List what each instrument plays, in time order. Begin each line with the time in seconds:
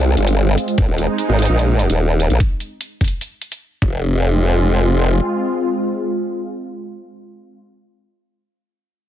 Already playing: wobble bass C2, analog synth pad G#3 C4 F4
0.17 wobble bass G1, closed hi-hat
0.27 closed hi-hat
0.58 closed hi-hat
0.68 closed hi-hat
0.78 wobble bass G#1, analog synth pad G#3 D#4, kick, closed hi-hat
0.88 wobble bass D#1
0.98 closed hi-hat
1.18 closed hi-hat
1.29 wobble bass G#1
1.39 closed hi-hat
1.42 closed hi-hat
1.45 wobble bass A#1, closed hi-hat
1.59 closed hi-hat
1.79 closed hi-hat
1.90 wobble bass D#1, closed hi-hat
2.20 closed hi-hat
2.30 wobble bass A#1, closed hi-hat
2.40 kick, closed hi-hat
2.60 closed hi-hat
2.81 closed hi-hat
3.01 kick, closed hi-hat
3.04 closed hi-hat
3.08 closed hi-hat
3.21 closed hi-hat
3.42 closed hi-hat
3.52 closed hi-hat
3.82 wobble bass F1, analog synth pad G#3 C4 F4, kick